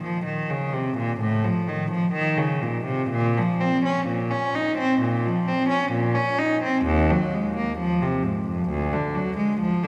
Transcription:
0.03 F3
0.25 D#3
0.50 C#3
0.74 C3
0.97 A#2
1.20 A2
1.44 F3
1.68 D#3
1.91 F3
2.13 D#3
2.38 C#3
2.62 A#2
2.85 C3
3.09 A#2
3.37 F3
3.61 C4
3.85 C#4
4.07 A#2
4.31 C#4
4.55 D#4
4.78 C4
5.01 A#2
5.25 F3
5.48 C4
5.69 C#4
5.92 A#2
6.15 C#4
6.39 D#4
6.63 C4
6.85 D#2
7.10 F#3
7.35 G#3
7.57 A#3
7.78 F3
8.01 C3
8.23 G#2
8.48 F2
8.69 D2
8.93 D3
9.15 F#3
9.37 G#3
9.60 F3
9.84 D3

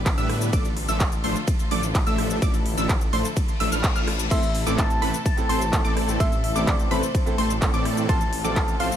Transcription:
Already playing: A1 D3 G3 B3 G4 B4
0.06 kick, clap, closed hi-hat, ride, shaker
0.18 A2 G3 B3 D4 B4 E5 E6, closed hi-hat, shaker
0.29 cross-stick, open hi-hat
0.41 closed hi-hat, shaker
0.53 A1 F3 A3 D4 F4 A4 D5 D6, kick, closed hi-hat, ride, shaker
0.65 closed hi-hat, shaker
0.77 open hi-hat
0.88 A1 F3 A3 D4 A4 E5 E6, closed hi-hat, shaker
1.00 kick, clap, closed hi-hat, ride, shaker
1.12 closed hi-hat, shaker
1.24 A1 F3 A3 D4 A4 C5 C6, open hi-hat
1.36 closed hi-hat, shaker
1.48 kick, closed hi-hat, ride, shaker
1.59 closed hi-hat, shaker
1.71 A1 F3 A3 D4 A4 D5 D6, open hi-hat
1.83 closed hi-hat, shaker
1.95 kick, clap, closed hi-hat, ride, shaker
2.07 A1 F3 A3 D4 A4 E5 E6, closed hi-hat, shaker
2.18 cross-stick, open hi-hat
2.30 closed hi-hat, shaker
2.42 A1 F3 A3 D4 E4 A4 D5 D6, kick, closed hi-hat, ride, shaker
2.54 closed hi-hat, shaker
2.66 open hi-hat
2.77 A1 F3 A3 D4 A4 E5 E6, closed hi-hat, shaker
2.89 kick, clap, closed hi-hat, ride, shaker
3.01 closed hi-hat, shaker
3.13 A1 F3 A3 D4 A4 C5 C6, open hi-hat
3.25 closed hi-hat, shaker
3.37 kick, closed hi-hat, ride, reverse cymbal, shaker
3.48 closed hi-hat, shaker
3.60 A1 F3 A3 D4 A4 E5 E6, open hi-hat
3.72 A1 F3 A3 D4 A4 F5 F6, closed hi-hat, shaker
3.84 kick, clap, closed hi-hat, ride, shaker
3.96 A1 F3 A3 D4 A4 F5 F6, closed hi-hat, shaker
4.08 cross-stick, open hi-hat
4.19 closed hi-hat, shaker
4.31 A1 A2 C3 E3 A3 C4 E4 A4 C5 E5 C6, kick, closed hi-hat, crash, ride, shaker
4.43 closed hi-hat, shaker
4.55 open hi-hat
4.66 A1 A2 E3 A3 C4 E4 A4 D5 D6, closed hi-hat, shaker
4.78 A5, kick, clap, closed hi-hat, ride, shaker
4.90 closed hi-hat, shaker
5.01 A1 A2 E3 A3 C4 E4 A4 B4 B5, open hi-hat
5.14 closed hi-hat, shaker
5.26 A5, kick, closed hi-hat, ride, shaker
5.37 A2 A3 C4 E4 A4, closed hi-hat, shaker
5.49 A1 E3 A3 C4 A4 C5 C6, open hi-hat
5.61 closed hi-hat, shaker
5.72 A2 A3 C4 E4 A4, kick, clap, closed hi-hat, ride, shaker
5.85 A1 E3 A3 C4 A4 D5 D6, closed hi-hat, shaker
5.97 cross-stick, open hi-hat
6.08 A2 A3 C4 E4 A4, closed hi-hat, shaker
6.20 A1 A2 E3 A3 C4 D4 E4 A4 C5 E5 C6, kick, closed hi-hat, ride, shaker
6.32 closed hi-hat, shaker
6.44 E5, open hi-hat
6.55 A1 A2 E3 A3 C4 E4 A4 D5 D6, closed hi-hat, shaker
6.67 D5, kick, clap, closed hi-hat, ride, shaker
6.79 closed hi-hat, shaker
6.90 A1 A2 E3 A3 C4 E4 A4 B4 C5 B5, open hi-hat
7.03 closed hi-hat, shaker
7.15 kick, closed hi-hat, ride, shaker
7.26 A2 A3 C4 E4 A4, closed hi-hat, shaker
7.38 A1 E3 A3 C4 A4 C5 C6, open hi-hat
7.50 closed hi-hat, shaker
7.61 A2 A3 C4 E4 A4, kick, clap, closed hi-hat, ride, shaker
7.74 A2 E3 A3 C4 A4 D5 D6, closed hi-hat, shaker
7.85 cross-stick, open hi-hat
7.97 A2 A3 C4 E4 A4, closed hi-hat, shaker
8.08 A1 A2 F3 A3 C4 F4 A4 C5 A5 C6, kick, closed hi-hat, ride, shaker
8.21 closed hi-hat, shaker
8.33 open hi-hat
8.44 A1 A2 F3 A3 C4 F4 A4 D5 D6, closed hi-hat, shaker
8.56 kick, clap, closed hi-hat, ride, shaker
8.68 closed hi-hat, shaker
8.79 A1 A2 F3 A3 C4 F4 A4 C5 F5 C6, open hi-hat
8.92 closed hi-hat, shaker

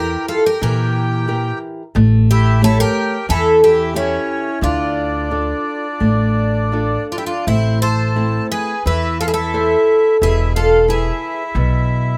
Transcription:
Already playing: E2 E4 G4 A#4
0.28 F4 A4
0.45 G4 A#4
0.61 A#2 E3 G4 A#4
1.28 E4 G4 A#4
1.95 A1 A3
2.31 E4 G4
2.61 A3 E4 G4 A4 C#5
2.80 G4 A#4
3.29 E2 E3 E4 A4
3.64 E4 G4
3.94 C#4 E4 G4 A4 C#5
4.61 D2 D3 D4 F4
5.31 D4 F4 A4
6.00 A1 A3
6.72 D4 F4 A4
7.11 D4 F4
7.18 E4 G4
7.26 D4 F4
7.47 A1 A3 C4 E4
7.81 A4 C5
8.16 A3 C4 E4
8.51 G#4 B4
8.86 E2 E3 E4 B4
9.20 F4 A4
9.27 E4 G#4
9.33 E4 A4
9.53 E4 A4 C5
10.21 E1 B2 E4 G#4
10.55 F4 A4
10.88 E4 G#4 B4
11.55 B1 B2

